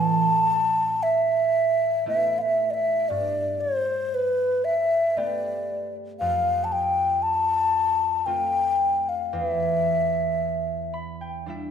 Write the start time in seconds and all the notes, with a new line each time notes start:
Already playing: A2 C4 E4 C5 E5 A5
1.03 E5
2.06 A3 B3 E4 E5
2.38 E5 F5
2.70 D5 E5
3.09 G2 D5
3.61 C5
4.14 B4
4.65 E5
5.17 A3 B3 G4 D5
6.20 F2 F5
6.64 A5
6.72 G5
7.22 A5
8.26 A3 C4 F4 G5
9.09 F5
9.33 E2 E5
10.94 B5
11.21 G5
11.46 G3 D4 E4 E5